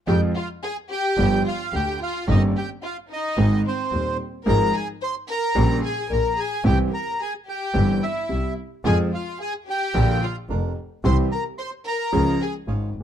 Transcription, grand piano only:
0.07 0.31 F2 medium
0.07 0.31 F3 medium
0.07 0.31 G#3 medium
0.07 0.31 C4 medium
0.07 0.31 G#4 medium
1.17 1.41 G1 medium
1.17 1.41 G2 medium
1.17 1.41 F3 medium
1.17 1.41 B3 medium
1.17 1.41 D4 medium
1.17 1.41 G4 medium
1.73 1.96 D2 medium
1.73 1.96 D3 medium
2.28 2.51 G1 medium
2.28 2.51 G2 medium
2.28 2.51 D#3 medium
2.28 2.51 A#3 medium
2.28 2.51 C#4 medium
2.28 2.51 G4 medium
3.38 3.61 G#1 medium
3.38 3.61 G#2 medium
3.38 3.61 D#3 medium
3.38 3.61 G#3 medium
3.38 3.61 C4 medium
3.38 3.61 G#4 medium
3.92 4.15 D#1 medium
3.92 4.15 D#2 soft
4.46 4.69 G#1 medium
4.46 4.69 G#2 medium
4.46 4.69 F3 medium
4.46 4.69 G#3 medium
4.46 4.69 C4 medium
4.46 4.70 G#4 medium
5.55 5.78 A#1 loud
5.55 5.78 A#2 loud
5.55 5.78 C#3 medium
5.55 5.78 G3 medium
5.55 5.78 A#3 medium
5.55 5.78 G4 medium
6.10 6.33 A#1 medium
6.10 6.33 A#2 medium
6.64 6.87 C2 medium
6.64 6.87 C3 medium
6.64 6.87 E3 medium
6.64 6.87 G3 medium
6.64 6.87 C4 medium
6.64 6.87 G4 medium
7.74 7.97 G1 medium
7.74 7.97 G2 medium
7.74 7.97 E3 medium
7.74 7.97 G3 medium
7.74 7.97 C4 medium
7.74 7.97 G4 medium
8.29 8.52 C2 soft
8.29 8.53 C3 medium
8.84 9.08 F2 medium
8.84 9.08 F3 medium
8.84 9.08 G#3 medium
8.84 9.08 C4 medium
8.84 9.08 G#4 medium
9.94 10.18 A#1 medium
9.94 10.18 A#2 medium
9.94 10.17 D3 medium
9.94 10.18 F3 medium
9.94 10.18 A#3 medium
9.94 10.18 F4 medium
10.49 10.72 F1 medium
10.49 10.72 F2 soft
11.04 11.27 C2 medium
11.04 11.27 C3 medium
11.04 11.27 E3 medium
11.04 11.27 G3 medium
11.04 11.27 C4 medium
11.04 11.27 G4 medium
12.12 12.36 C#2 medium
12.12 12.36 C#3 medium
12.12 12.35 F3 medium
12.12 12.36 G#3 medium
12.12 12.36 C#4 medium
12.12 12.36 G#4 medium
12.67 12.90 G#1 medium
12.67 12.90 G#2 soft

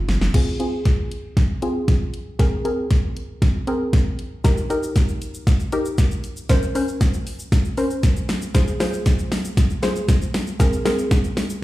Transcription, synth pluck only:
0.00 0.11 C4 medium
0.00 0.12 D#4 medium
0.00 0.12 F4 loud
0.34 0.52 C4 medium
0.34 0.52 F4 medium
0.34 0.52 G#4 loud
0.60 1.32 C4 medium
0.60 1.32 F4 medium
0.60 1.32 G#4 medium
1.62 2.17 C4 medium
1.62 2.17 F4 medium
1.62 2.17 G#4 loud
2.39 2.57 C4 medium
2.39 2.57 G#4 medium
2.39 2.58 A#4 loud
2.65 3.37 C4 medium
2.65 3.37 G#4 medium
2.65 3.37 A#4 medium
3.67 4.22 C4 medium
3.67 4.22 G#4 medium
3.67 4.22 A#4 loud
4.44 4.62 D#4 medium
4.44 4.63 G4 medium
4.44 4.63 A#4 loud
4.70 5.42 D#4 medium
4.70 5.42 G4 medium
4.70 5.43 A#4 medium
5.72 6.27 D#4 medium
5.72 6.27 G4 medium
5.72 6.27 A#4 medium
6.49 6.68 C#4 medium
6.49 6.68 A#4 medium
6.49 6.68 C5 loud
6.75 7.47 C#4 medium
6.75 7.48 A#4 medium
6.75 7.48 C5 medium
7.77 8.32 C#4 medium
7.77 8.32 A#4 medium
7.77 8.32 C5 medium
8.54 8.73 F4 medium
8.54 8.73 G#4 medium
8.54 8.73 C5 medium
8.80 9.53 F4 medium
8.80 9.53 G#4 medium
8.80 9.53 C5 medium
9.83 10.37 F4 medium
9.83 10.37 G#4 medium
9.83 10.37 C5 loud
10.60 10.78 C4 medium
10.60 10.78 G#4 medium
10.60 10.78 A#4 loud
10.85 11.58 C4 medium
10.85 11.58 G#4 medium
10.85 11.58 A#4 medium

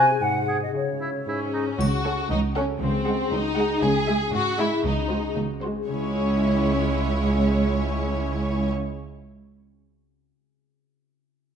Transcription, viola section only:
2.05 2.24 C#4 soft
2.05 2.25 A4 soft
2.57 2.76 C#4 medium
2.57 2.75 A4 soft
3.07 3.26 G#3 soft
3.07 3.26 G#4 soft
3.58 3.76 G#3 medium
3.58 3.76 G#4 medium
4.08 4.27 G#3 soft
4.08 4.27 G#4 soft
4.59 4.78 G#3 soft
4.59 4.78 G#4 medium
5.10 5.29 G#3 soft
5.10 5.29 F#4 soft
5.62 5.82 G#3 soft
5.62 5.82 F#4 soft
5.88 8.69 G#3 soft
5.88 8.69 E4 soft

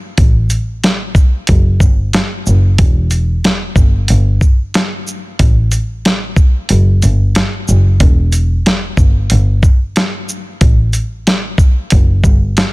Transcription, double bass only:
0.18 0.44 A1 loud
1.49 1.75 F#1 loud
1.81 2.07 G1 medium
2.47 2.63 F#1 medium
2.79 3.31 E1 loud
3.76 4.02 G1 loud
4.10 4.36 G1 loud
5.40 5.66 A1 loud
6.70 6.96 F#1 loud
7.03 7.29 G1 loud
7.68 7.84 F#1 medium
8.01 8.53 E1 loud
8.98 9.24 G1 medium
9.31 9.57 G1 loud
10.62 10.88 A1 loud
11.92 12.18 F#1 loud
12.24 12.50 G1 loud

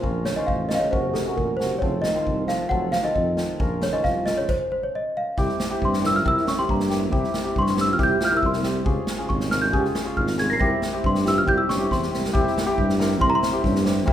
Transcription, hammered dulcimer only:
0.02 0.19 C#4 medium
0.02 0.20 F4 medium
0.02 0.20 A#4 medium
0.36 0.53 C#4 medium
0.36 0.54 F4 medium
0.36 0.54 C5 medium
0.70 0.81 C#4 soft
0.70 0.81 F4 soft
0.70 0.82 A#4 medium
0.91 1.09 C#4 medium
0.91 1.09 F#4 medium
0.91 1.09 A#4 medium
1.26 1.43 C#4 medium
1.26 1.43 F#4 medium
1.26 1.43 A#4 medium
1.59 1.70 C#4 medium
1.59 1.71 F#4 soft
1.59 1.71 A#4 medium
1.81 1.98 C4 medium
1.81 1.99 F4 medium
1.81 1.99 A4 medium
2.15 2.32 C4 medium
2.15 2.32 F4 medium
2.15 2.33 C5 medium
2.47 2.59 C4 medium
2.47 2.59 F4 soft
2.47 2.60 A4 medium
2.70 2.87 C4 medium
2.70 2.87 F4 medium
2.70 2.88 A4 medium
3.04 3.21 C4 medium
3.04 3.21 F4 medium
3.04 3.21 A4 medium
3.37 3.48 C4 medium
3.37 3.49 F4 soft
3.37 3.49 A4 soft
3.59 3.76 C#4 medium
3.59 3.76 F4 medium
3.59 3.76 A#4 medium
3.93 4.10 C#4 medium
3.93 4.10 F4 medium
3.93 4.10 C5 medium
4.27 4.38 C#4 soft
4.27 4.38 F4 soft
4.27 4.38 A#4 medium
5.37 5.53 C4 medium
5.37 5.54 E4 medium
5.37 5.54 G4 medium
5.70 5.86 C4 medium
5.70 5.86 E4 medium
5.70 5.87 G4 medium
6.02 6.13 C4 medium
6.02 6.13 E4 soft
6.02 6.14 A#4 medium
6.25 6.41 C4 medium
6.25 6.41 E4 medium
6.25 6.41 A#4 medium
6.58 6.74 C4 medium
6.58 6.74 E4 medium
6.58 6.74 G4 medium
6.90 7.01 C4 medium
6.90 7.01 E4 soft
6.90 7.01 G4 medium
7.11 7.28 C4 medium
7.11 7.28 E4 medium
7.11 7.28 G4 medium
7.44 7.61 C4 medium
7.44 7.61 E4 medium
7.44 7.61 G4 medium
7.76 7.88 C4 medium
7.76 7.88 E4 soft
7.76 7.88 G4 medium
7.98 8.15 C4 medium
7.98 8.15 E4 medium
7.98 8.16 G4 medium
8.31 8.48 C4 medium
8.31 8.49 E4 medium
8.31 8.49 A#4 medium
8.64 8.75 C4 medium
8.64 8.76 E4 soft
8.64 8.76 G4 medium
8.85 9.02 C#4 medium
8.85 9.03 F4 medium
8.85 9.03 G#4 medium
9.18 9.35 C#4 medium
9.18 9.35 F4 medium
9.18 9.35 G#4 medium
9.51 9.62 C#4 medium
9.51 9.62 F4 soft
9.51 9.63 A#4 medium
9.72 9.89 C#4 medium
9.72 9.89 F4 medium
9.72 9.90 G#4 medium
10.04 10.22 C#4 medium
10.04 10.22 F4 medium
10.04 10.22 G#4 medium
10.37 10.49 C#4 medium
10.37 10.49 F4 soft
10.37 10.49 A#4 medium
10.60 10.76 C4 medium
10.60 10.77 E4 medium
10.60 10.77 G4 medium
10.93 11.09 C4 medium
10.93 11.09 E4 medium
10.93 11.09 G4 medium
11.25 11.36 C4 soft
11.25 11.36 E4 medium
11.25 11.36 G4 medium
11.46 11.63 C4 medium
11.46 11.63 E4 medium
11.46 11.64 G4 medium
11.78 11.95 C4 medium
11.78 11.95 E4 medium
11.78 11.95 G4 medium
12.11 12.22 C4 soft
12.11 12.22 E4 soft
12.11 12.23 G4 medium
12.33 12.50 C4 medium
12.33 12.50 E4 medium
12.33 12.50 G4 loud
12.66 12.82 C4 medium
12.66 12.82 E4 medium
12.66 12.83 G4 loud
12.99 13.10 C4 medium
12.99 13.10 E4 medium
12.99 13.10 A#4 medium
13.19 13.36 C4 medium
13.19 13.37 E4 medium
13.19 13.37 A#4 medium
13.52 13.69 C4 medium
13.52 13.69 E4 medium
13.52 13.69 G4 medium
13.84 13.96 C4 medium
13.84 13.96 E4 medium
13.84 13.96 G4 medium
14.06 14.13 C4 loud
14.06 14.13 E4 medium
14.06 14.13 A#4 loud

